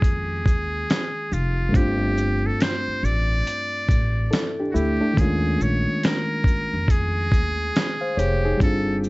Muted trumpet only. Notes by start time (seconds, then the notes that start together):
Already playing: G#4
1.33 F4
1.76 G4
2.47 A4
2.62 C5
3.05 D5
4.71 F#4
4.76 G4
5.20 G#4
5.62 C#5
6.05 A#4
6.91 G#4
8.19 G4
8.63 A4